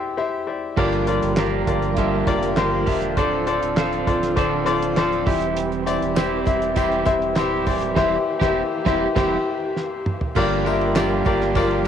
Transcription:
Already playing: E2 E3 E4 G4 C5 D5 E5 G5
0.17 E4 G4 C5 E5
0.47 E4 G4 C5 D5 E5
0.76 G1 G2 D3 F3 G3 A#3 D4 F4 G4 A#4 D5, kick, crash
0.92 closed hi-hat
1.07 F4 G4 A#4 D5, closed hi-hat
1.23 G1, closed hi-hat
1.36 F3 A#3 D4 F4 G4 A#4 D5, snare, clap
1.67 G1 F4 G4 A#4 D5, kick, closed hi-hat
1.82 closed hi-hat
1.97 G2 D3 F3 A#3 D4 F4 G4 A#4 E5, kick, closed hi-hat
2.27 F1 F4 G4 A#4 D5, kick, closed hi-hat
2.43 closed hi-hat
2.56 G1 F3 A#3 D4 F4 G4 A#4 C5, snare, clap
2.86 E1 F3 A#3 D4 F4 G4 A#4 E5, kick, open hi-hat
3.02 closed hi-hat
3.17 D1 D3 F3 C4 D4 F4 A4 C5 D5, kick, closed hi-hat
3.46 C4 D4 F4 A4 C5 D5, closed hi-hat
3.62 D1, closed hi-hat
3.76 F3 C4 D4 F4 A4 C5 F5, snare, clap
3.92 closed hi-hat
4.07 D1 F4 A4 C5 D5, kick, closed hi-hat
4.23 snare, closed hi-hat
4.36 D1 D3 F3 C4 D4 F4 A4 C5 D5, kick, closed hi-hat
4.66 F4 A4 C5 D5, closed hi-hat
4.82 closed hi-hat
4.96 F3 C4 D4 F4 A4 C5 D5, snare, clap
5.12 closed hi-hat
5.26 E1 E3 G3 C4 E4 G4 C5 E5, kick, open hi-hat
5.42 closed hi-hat
5.56 closed hi-hat
5.72 closed hi-hat
5.86 E4 G4 C5 D5, closed hi-hat, tambourine
6.02 E1, closed hi-hat
6.15 G3 C4 E4 G4 C5 E5, snare, clap, tambourine
6.46 E1 E4 G4 C5 E5, kick, closed hi-hat, tambourine
6.62 closed hi-hat
6.76 E3 G3 C4 E4 G4 C5 E5, kick, closed hi-hat, tambourine
6.92 closed hi-hat
7.05 E1 E4 G4 C5 E5, kick, closed hi-hat, tambourine
7.22 closed hi-hat
7.35 D1 G3 C4 E4 G4 C5 E5, snare, clap, tambourine
7.66 D1 E3 A#3 E4 G4 C5 D5, kick, open hi-hat, tambourine
7.82 closed hi-hat
7.95 E1 E3 G3 C4 E4 G4 C5 E5, kick, snare, crash
8.40 E1 C4 E4 G4 C5 E5, kick, snare
8.85 E1 G3 C4 E4 G4 C5 E5, kick, snare
9.15 E1 E3 G3 C4 E4 G4 C5 E5, kick, snare, crash
9.76 snare
10.06 mid tom
10.21 floor tom
10.35 G1 G2 D3 F3 G3 A#3 D4 F4 G4 A#4 D5, kick, crash, tambourine
10.65 F3 A#3 D4 F4 G4 A#4 E5, ride, tambourine
10.81 ride
10.95 G2 D3 F3 A#3 D4 F4 G4 A#4 D5, snare, clap, ride, tambourine
11.25 G1 F3 A#3 D4 F4 G4 A#4 D5, kick, ride, tambourine
11.41 snare, ride
11.55 F3 A#3 D4 F4 G4 A#4 D5, kick, ride, tambourine
11.71 ride
11.85 G4

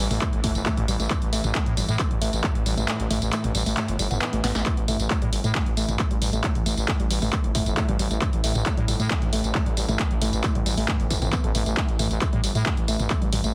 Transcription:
Already playing: A2 E3
0.11 A1 A3, mid tom, open hi-hat, tambourine
0.22 A3, kick, clap, closed hi-hat, tambourine
0.33 G1, closed hi-hat
0.44 G1 A3, kick, mid tom, open hi-hat, tambourine
0.55 G1, closed hi-hat, tambourine
0.66 A3, kick, clap, closed hi-hat, tambourine
0.77 A1, closed hi-hat, mid tom
0.88 A1 G3, open hi-hat, tambourine
1.00 A1 A3, closed hi-hat, tambourine
1.10 A3, kick, clap, closed hi-hat, mid tom
1.22 A1, closed hi-hat
1.33 A1 A3, open hi-hat, tambourine
1.44 A1, closed hi-hat, mid tom, tambourine
1.55 A3, kick, clap, closed hi-hat, tambourine
1.66 A2, closed hi-hat
1.77 G1 G3, mid tom, open hi-hat, tambourine
1.89 A2 A3, closed hi-hat, tambourine
1.99 A3, kick, clap, closed hi-hat
2.11 A1, closed hi-hat, mid tom
2.22 A1 A3, open hi-hat, tambourine
2.33 A1, closed hi-hat, tambourine
2.44 A3, kick, clap, closed hi-hat, mid tom
2.55 A1, closed hi-hat
2.66 A1 G3, open hi-hat, tambourine
2.77 A1 A3, closed hi-hat, mid tom, tambourine
2.88 A3, clap, closed hi-hat, tambourine
3.00 A1, closed hi-hat
3.10 A1 A3, mid tom, open hi-hat, tambourine
3.22 A1, closed hi-hat, tambourine
3.33 A3, clap, closed hi-hat, tambourine
3.44 A1, closed hi-hat, mid tom
3.55 A1 G3, open hi-hat, tambourine
3.66 A1 A3, open hi-hat, tambourine
3.77 A3, clap, closed hi-hat, mid tom, tambourine
3.88 G1, closed hi-hat
3.99 G1 G3, open hi-hat, tambourine
4.11 G1 B3, closed hi-hat, mid tom, tambourine
4.22 B3, clap, closed hi-hat, tambourine
4.33 A1 A3, closed hi-hat
4.44 A1 B3, snare, mid tom, open hi-hat, tambourine
4.55 A1 A3, snare, closed hi-hat, tambourine
4.66 A2 E3 A3, kick, clap, closed hi-hat, tambourine
4.77 A1, closed hi-hat
4.88 A1 A3, mid tom, open hi-hat, tambourine
5.00 A1, closed hi-hat, tambourine
5.10 A3, kick, clap, closed hi-hat
5.22 A2 G3, closed hi-hat, mid tom
5.33 G1 G3, open hi-hat, tambourine
5.44 A2 A3, closed hi-hat, tambourine
5.55 A3, kick, clap, closed hi-hat, mid tom
5.66 A1, closed hi-hat
5.77 A1 A3, open hi-hat, tambourine
5.89 A1, closed hi-hat, mid tom, tambourine
5.99 A3, kick, clap, closed hi-hat, tambourine
6.11 A1 G3, closed hi-hat
6.22 A1 G3, mid tom, open hi-hat, tambourine
6.33 A1 A3, closed hi-hat, tambourine
6.44 A3, kick, clap, closed hi-hat, tambourine
6.55 A1, closed hi-hat, mid tom
6.66 A1 A3, open hi-hat, tambourine
6.77 A1, closed hi-hat, tambourine
6.88 A3, kick, clap, closed hi-hat, mid tom, tambourine
7.00 A1 G3, closed hi-hat
7.11 A1 G3, open hi-hat, tambourine
7.22 A1 A3, mid tom, open hi-hat, tambourine
7.33 A3, kick, clap, closed hi-hat, tambourine
7.44 G1, closed hi-hat
7.55 G1 A3, kick, mid tom, open hi-hat, tambourine
7.66 G1, closed hi-hat, tambourine
7.77 A3, kick, clap, closed hi-hat, tambourine
7.89 A1 G3, closed hi-hat, mid tom
7.99 A1 G3, open hi-hat, tambourine
8.11 A1 A3, closed hi-hat, tambourine
8.22 A3, kick, clap, closed hi-hat, mid tom, tambourine
8.33 A1, closed hi-hat
8.44 A1 A3, open hi-hat, tambourine
8.55 A1, closed hi-hat, mid tom, tambourine
8.66 A3, kick, clap, closed hi-hat
8.77 A2 G3, closed hi-hat
8.88 G1 G3, mid tom, open hi-hat, tambourine
9.00 A2 A3, closed hi-hat, tambourine
9.11 A3, kick, clap, closed hi-hat, tambourine
9.22 A1, closed hi-hat, mid tom
9.33 A1 A3, open hi-hat, tambourine
9.44 A1, closed hi-hat, tambourine
9.55 A3, kick, clap, closed hi-hat, mid tom, tambourine
9.66 A1 G3, closed hi-hat
9.77 A1 G3, open hi-hat, tambourine
9.89 A1 A3, closed hi-hat, mid tom, tambourine
9.99 A3, kick, clap, closed hi-hat, tambourine
10.11 A1, closed hi-hat
10.22 A1 A3, mid tom, open hi-hat, tambourine
10.33 A1, closed hi-hat, tambourine
10.44 A3, kick, clap, closed hi-hat, tambourine
10.55 A1 G3, closed hi-hat, mid tom
10.66 A1 G3, open hi-hat, tambourine
10.77 A1 A3, open hi-hat, tambourine
10.88 kick, clap, closed hi-hat, mid tom, tambourine
11.00 G1, closed hi-hat
11.10 G1, kick, open hi-hat, tambourine
11.22 G1 C4, closed hi-hat, mid tom, tambourine
11.33 B3, kick, clap, closed hi-hat, tambourine
11.44 A1 A4, closed hi-hat
11.55 A1 A3, mid tom, open hi-hat, tambourine
11.66 A1 A3, closed hi-hat, tambourine
11.77 A3, kick, clap, closed hi-hat
11.89 A1, closed hi-hat
11.99 A1 A3, mid tom, open hi-hat, tambourine
12.11 A1, closed hi-hat, tambourine
12.21 A3, kick, clap, closed hi-hat, tambourine
12.33 A2 G3, closed hi-hat, mid tom
12.44 G1 G3, open hi-hat, tambourine
12.55 A2 A3, closed hi-hat, tambourine
12.66 A3, kick, clap, closed hi-hat, mid tom, tambourine
12.77 A1, closed hi-hat
12.88 A1 A3, open hi-hat, tambourine
12.99 A1, closed hi-hat, mid tom, tambourine
13.10 A3, kick, clap, closed hi-hat, tambourine
13.22 A1 G3, closed hi-hat
13.33 A1 G3, mid tom, open hi-hat, tambourine
13.44 A1 A3, closed hi-hat, tambourine

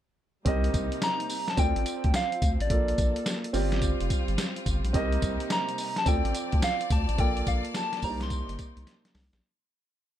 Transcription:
0.45 C2 C3 G3 A#3 C4 D#4 G4 A#4 D#5, kick, closed hi-hat
0.64 closed hi-hat
0.74 C2, kick, closed hi-hat, tambourine
0.92 closed hi-hat
1.02 A#5, snare, closed hi-hat, tambourine
1.20 closed hi-hat
1.30 open hi-hat, tambourine
1.48 A5, snare, closed hi-hat
1.57 D2 F3 C4 F4 A4 D5 G5, kick, closed hi-hat, tambourine
1.76 A1, closed hi-hat
1.86 closed hi-hat, tambourine
2.04 D2, kick, closed hi-hat
2.14 F5, snare, closed hi-hat, tambourine
2.32 closed hi-hat
2.42 D2, kick, closed hi-hat, tambourine
2.60 A1 D5, closed hi-hat
2.70 A#1 A#3 F4 A4 D5, kick, closed hi-hat
2.88 closed hi-hat
2.98 A#1, kick, closed hi-hat, tambourine
3.16 closed hi-hat
3.26 snare, closed hi-hat, tambourine
3.44 closed hi-hat
3.53 G1 G3 C4 F4 G4 D5, open hi-hat, tambourine
3.72 snare, closed hi-hat
3.82 kick, closed hi-hat, tambourine
4.00 F1, closed hi-hat
4.10 kick, closed hi-hat, tambourine
4.28 G1, closed hi-hat
4.38 snare, closed hi-hat, tambourine
4.56 closed hi-hat
4.66 G1, kick, closed hi-hat, tambourine
4.84 A#1, closed hi-hat
4.93 C2 C3 A#3 C4 D#4 G4 A#4 D#5, kick, closed hi-hat
5.12 closed hi-hat
5.22 C2, kick, closed hi-hat, tambourine
5.40 closed hi-hat
5.50 A#5, snare, closed hi-hat, tambourine
5.69 closed hi-hat
5.78 open hi-hat, tambourine
5.96 A5, snare, closed hi-hat
6.05 D2 F3 C4 F4 A4 D5 G5, kick, closed hi-hat, tambourine
6.25 A1, closed hi-hat
6.35 closed hi-hat, tambourine
6.52 D2, kick, closed hi-hat
6.62 F5, snare, closed hi-hat, tambourine
6.81 closed hi-hat
6.90 D2 A5, kick, closed hi-hat, tambourine
7.09 A1, closed hi-hat
7.18 A#1 A#3 F4 A4 D5 G5, kick, closed hi-hat
7.37 closed hi-hat
7.47 A#1 F5, kick, closed hi-hat, tambourine
7.65 closed hi-hat
7.74 A5, snare, closed hi-hat, tambourine
7.93 snare, closed hi-hat
8.02 C2 C3 G3 A#3 D4 D#4 G4 C5 A#5, kick, open hi-hat, tambourine
8.09 D#4
8.21 C6, snare, closed hi-hat
8.30 kick, closed hi-hat, tambourine
8.49 G1, closed hi-hat
8.59 kick, closed hi-hat, tambourine
8.77 C2, closed hi-hat
8.87 snare, closed hi-hat
9.05 snare, closed hi-hat
9.15 C2, snare, open hi-hat
9.33 A#1, snare, closed hi-hat

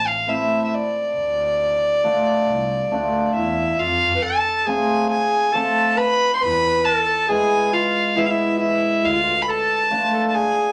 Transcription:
Already playing: A1
0.07 F5
0.27 A3 C4 E4 E5
0.65 E5
0.74 D5
1.15 D2
2.04 A3 D4 F4
2.47 C2
2.91 D2 A3 D4 F4
3.35 E2 E4 E5
3.79 F2 F4 F5
4.15 B4
4.22 A4 A5
4.66 A3 C4 F4 G#4 G#5
5.10 G#4 G#5
5.52 A3 C4 F4 A4 A5
5.97 B4 B5
6.34 C5 C6
6.41 E2 B4 B5
6.84 A4 A5
7.28 G#3 B3 E4 G#4 G#5
7.73 F4 F5
8.16 G#3 B3 E4 E5
8.26 E4 F5
8.30 E5
8.59 E4 E5
9.03 D2 F4 F5
9.42 B5
9.48 A4 A5
9.91 A3 D4 F4
10.13 A4
10.28 A5
10.34 G#4 G#5

